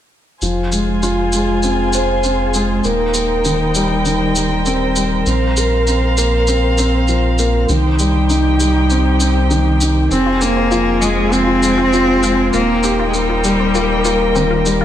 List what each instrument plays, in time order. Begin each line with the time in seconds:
0.42 analog synth bass F1, felt piano F3, string quartet F4 G#4 C5 G#5, shaker
0.72 felt piano G#3, shaker
1.03 felt piano F4, shaker
1.32 felt piano G#3, shaker
1.63 felt piano C4, shaker
1.93 felt piano C5, shaker
2.24 felt piano C4, shaker
2.54 felt piano G#3, shaker
2.84 analog synth bass D#1, felt piano A#3, string quartet D#4 A#4 G5, shaker
3.14 felt piano A#3, shaker
3.45 felt piano D#3, shaker
3.75 felt piano G3, shaker
4.05 felt piano D#3, shaker
4.36 felt piano G3, shaker
4.66 felt piano C4, shaker
4.96 felt piano G3, shaker
5.26 analog synth bass A#1, felt piano C4, string quartet F5, shaker
5.57 felt piano A#4, shaker
5.87 felt piano C4, shaker
6.17 felt piano A#3, shaker
6.47 felt piano C4, shaker
6.78 felt piano C4, shaker
7.08 felt piano F3, shaker
7.38 felt piano A#3, shaker
7.69 analog synth bass C2, felt piano D#3, string quartet D#4 G4 G5, shaker
7.99 felt piano G3, shaker
8.30 felt piano D#4, shaker
8.60 felt piano G3, shaker
8.90 felt piano C4, shaker
9.20 felt piano C4, shaker
9.51 felt piano D#3, shaker
9.81 felt piano D#4, shaker
10.09 analog synth bass F1, cello C4, felt piano C4, string quartet F4 G#4 C5 G#5, shaker
10.26 synth arpeggio sound F4
10.41 cello A#3, felt piano C4, shaker
10.57 synth arpeggio sound C4
10.72 felt piano F3, synth arpeggio sound F4, shaker
11.01 cello G#3, felt piano G#3, synth arpeggio sound F4, shaker
11.32 felt piano F3, cello C4, synth arpeggio sound C4, shaker
11.47 synth arpeggio sound F4
11.63 felt piano G#3, shaker
11.78 synth arpeggio sound F4
11.93 felt piano F4, shaker
12.08 synth arpeggio sound C4
12.23 felt piano G#3, synth arpeggio sound F4, shaker
12.53 analog synth bass D#1, cello A#3, felt piano A#3, string quartet D#4 A#4 G5, synth arpeggio sound F4, shaker
12.83 synth arpeggio sound C4, felt piano G4, shaker
12.99 synth arpeggio sound F4
13.07 cello G#3
13.14 cello G3, felt piano A#3, shaker
13.30 synth arpeggio sound F4
13.44 felt piano G3, shaker
13.60 synth arpeggio sound C4
13.75 felt piano A#3, synth arpeggio sound F4, shaker
14.05 felt piano A#3, synth arpeggio sound F4, shaker
14.35 felt piano D#3, synth arpeggio sound C4, shaker
14.51 synth arpeggio sound F4
14.66 felt piano G3, shaker
14.81 synth arpeggio sound F4